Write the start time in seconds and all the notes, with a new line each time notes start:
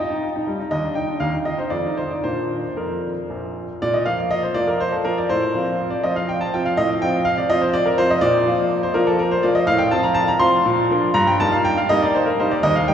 0.00 F4 D#5
0.10 D#4
0.23 F4
0.36 D#4
0.47 G3
0.59 D#4
0.71 D#2 D#5
0.84 D4
0.95 D#4 G5
1.08 D4
1.20 D#2 F5
1.34 D#4
1.45 F4 D#5
1.58 D#4 C5
1.70 F2 D5
1.85 D#4
1.97 F4 C5
2.11 D#4 D5
2.24 A#2 A#3 D4 C5
2.77 F2 A#4
3.30 A#1
3.82 A#2 D5
3.94 D#5
4.05 F3 A#3 F4 F5
4.18 D5
4.31 D#5
4.43 C5
4.54 F3 A#3 F4 D5
4.67 A#4
4.80 C5
4.92 A4
5.05 F3 A#3 F4 A#4
5.18 D5
5.30 A2 C5
5.55 F3 C4 F4
5.90 D5
6.03 F3 C4 F4 D#5
6.16 F5
6.29 G5
6.41 A5
6.54 F3 C4 F4 G5
6.65 F5
6.77 A2 D#5
7.02 F3 C4 F4 G5
7.25 F5
7.38 D5
7.50 F3 C4 F4 D#5
7.62 C5
7.73 D5
7.86 A#4
7.98 F3 C4 F4 C5
8.10 D#5
8.21 A#2 D5
8.47 F3 A#3 F4
8.83 C5
8.94 F3 A#3 F4 A#4
9.07 A4
9.19 A#4
9.31 C5
9.43 F3 A#3 F4 D5
9.55 D#5
9.67 A2 F5
9.78 G5
9.91 F3 C4 F4 A5
10.03 A#5
10.14 A5
10.28 A#5
10.40 F3 C4 F4 C6
10.66 A#2
10.91 F3 A#3 D4
11.14 G2 A#5
11.27 G5
11.40 G3 A#3 D#4 A5
11.52 F5
11.65 G5
11.77 F5
11.89 G3 A#3 D#4 D#5
12.02 D5
12.15 C5
12.26 A#4
12.40 G3 A#3 D#4 C5
12.51 D5
12.63 D#2 D#5
12.75 F5
12.88 G3 A#3 D4 G5